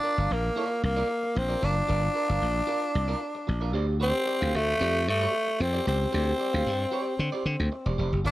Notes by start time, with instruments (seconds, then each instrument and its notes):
Already playing: tenor saxophone D4
0.03 clean electric guitar F4 A#4 D5
0.17 slap bass G1, clean electric guitar F4 A#4 F5
0.31 slap bass A#1, tenor saxophone A#3
0.43 muted clean electric guitar stroke
0.56 clean electric guitar F4 A#4 D5
0.70 muted clean electric guitar stroke
0.82 slap bass C2, tenor saxophone A#3, muted clean electric guitar stroke
0.96 clean electric guitar F4 A#4 D5
1.09 muted clean electric guitar stroke
1.23 muted clean electric guitar stroke
1.35 slap bass A#1, tenor saxophone C4, muted clean electric guitar stroke
1.49 clean electric guitar F4 A#4 D5
1.62 slap bass F#1, tenor saxophone D4, clean electric guitar F4 A#4 D5
1.76 muted clean electric guitar stroke
1.88 slap bass G1, clean electric guitar F4 A#4 D5
2.03 muted clean electric guitar stroke
2.14 clean electric guitar F4 A#4 D5
2.29 slap bass G1, clean electric guitar F4 A#4 F5
2.42 slap bass A#1
2.56 muted clean electric guitar stroke
2.67 clean electric guitar F4 A#4 D5
2.82 muted clean electric guitar stroke
2.94 slap bass C2, muted clean electric guitar stroke
3.08 clean electric guitar F4 A#4 D5
3.21 muted clean electric guitar stroke
3.35 muted clean electric guitar stroke
3.47 slap bass A#1, muted clean electric guitar stroke
3.61 clean electric guitar F4 A#4 D5
3.73 slap bass D2, clean electric guitar G4 C5 D5
3.87 muted clean electric guitar stroke
4.00 tenor saxophone C4, clean electric guitar G4 C5 D5
4.14 muted clean electric guitar stroke
4.26 clean electric guitar G4 C5 D5
4.41 slap bass D2, clean electric guitar G4 C5 F5
4.54 slap bass D2, tenor saxophone A3
4.67 muted clean electric guitar stroke
4.80 slap bass F2, clean electric guitar G4 C5 D5
4.95 muted clean electric guitar stroke
5.07 slap bass G2, tenor saxophone A3, muted clean electric guitar stroke
5.21 clean electric guitar G4 C5 D5
5.34 muted clean electric guitar stroke
5.47 muted clean electric guitar stroke
5.60 slap bass F2, tenor saxophone C4, muted clean electric guitar stroke
5.73 clean electric guitar G4 C5 D5
5.86 slap bass C#2, tenor saxophone C4, clean electric guitar G4 C5 D5
6.00 muted clean electric guitar stroke
6.12 slap bass D2, clean electric guitar G4 C5 D5
6.27 muted clean electric guitar stroke
6.38 clean electric guitar G4 C5 D5
6.53 slap bass D2, clean electric guitar G4 C5 F5
6.67 slap bass G2
6.79 muted clean electric guitar stroke
6.91 clean electric guitar G4 C5 D5
7.06 muted clean electric guitar stroke
7.19 slap bass D3, muted clean electric guitar stroke
7.32 clean electric guitar G4 C5 D5
7.45 slap bass D3, muted clean electric guitar stroke
7.60 slap bass D2, muted clean electric guitar stroke
7.72 muted clean electric guitar stroke
7.86 slap bass E1, clean electric guitar G4 C5 D5
7.98 slap bass F1, clean electric guitar G4 C5 D5
8.12 slap bass F#1, muted clean electric guitar stroke
8.25 slap bass G1, tenor saxophone D4, clean electric guitar F4 A#4 D5